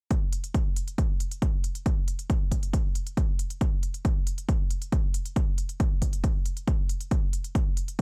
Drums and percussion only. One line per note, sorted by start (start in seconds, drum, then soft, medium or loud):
0.11 kick loud
0.11 closed hi-hat medium
0.33 closed hi-hat loud
0.44 closed hi-hat medium
0.54 kick loud
0.54 closed hi-hat medium
0.76 closed hi-hat medium
0.88 closed hi-hat medium
0.98 kick loud
0.98 closed hi-hat medium
1.20 closed hi-hat medium
1.31 closed hi-hat medium
1.42 kick loud
1.42 closed hi-hat medium
1.64 closed hi-hat medium
1.75 closed hi-hat medium
1.86 kick loud
1.86 closed hi-hat medium
2.08 closed hi-hat loud
2.19 closed hi-hat medium
2.30 kick loud
2.30 closed hi-hat medium
2.52 kick medium
2.52 closed hi-hat medium
2.63 closed hi-hat medium
2.73 kick loud
2.73 closed hi-hat medium
2.95 closed hi-hat medium
3.07 closed hi-hat medium
3.17 kick loud
3.17 closed hi-hat medium
3.39 closed hi-hat medium
3.50 closed hi-hat medium
3.61 kick loud
3.61 closed hi-hat medium
3.83 closed hi-hat medium
3.94 closed hi-hat medium
4.05 kick loud
4.05 closed hi-hat medium
4.27 closed hi-hat medium
4.38 closed hi-hat medium
4.49 kick loud
4.49 closed hi-hat medium
4.71 closed hi-hat medium
4.82 closed hi-hat medium
4.92 kick loud
4.92 closed hi-hat medium
5.14 closed hi-hat medium
5.25 closed hi-hat medium
5.36 kick loud
5.36 closed hi-hat medium
5.58 closed hi-hat medium
5.69 closed hi-hat medium
5.80 kick loud
5.80 closed hi-hat medium
6.02 kick medium
6.02 closed hi-hat medium
6.13 closed hi-hat medium
6.24 kick loud
6.24 closed hi-hat medium
6.46 closed hi-hat medium
6.57 closed hi-hat medium
6.68 kick loud
6.68 closed hi-hat medium
6.89 closed hi-hat medium
7.01 closed hi-hat medium
7.11 kick loud
7.11 closed hi-hat medium
7.33 closed hi-hat medium
7.44 closed hi-hat medium
7.55 kick loud
7.55 closed hi-hat medium
7.77 closed hi-hat medium
7.88 closed hi-hat medium